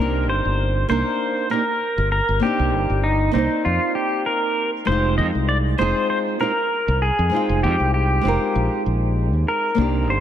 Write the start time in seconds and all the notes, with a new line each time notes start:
Already playing: A#3 C4 A#4
0.00 C2 D4 D#4 G4
0.29 G1 C5
0.45 G1
0.89 C2 A#3 C4 D4 D#4 A#4 C5
1.50 A#3 C4 D4 D#4 G4 A#4
1.98 G1
2.12 A#4
2.29 G1
2.40 A#3 C4 D4 G4
2.45 D#4 G4
2.59 C2
2.74 G1
2.90 G1
3.04 D#4
3.32 C2 A#3 C4 D#4 D5
3.37 D#4 C5
3.65 F2 F4
3.95 G4
4.26 A#4
4.85 F1 G#3 C4 D#4 C5
4.90 F4 G4
5.18 F2 D#5
5.35 C2
5.49 D5
5.78 F1 G#3 C4 D#4 F4 G#4 C5
6.10 C5
6.39 G#3 C4 D#4 F4 G4 A#4
6.88 C2
7.02 G#4
7.19 F2
7.30 G#3 C4 D#4
7.34 F4 G5
7.49 F1
7.63 F2 G4
7.80 C2
7.94 G4
8.21 F1 G#3 C4 D#4
8.27 F4 A#4
8.55 A#1
8.86 A#1
9.33 D#2
9.48 A#4
9.75 C2 A#3 C4 D4
9.80 D#4 G4
10.08 G1 C5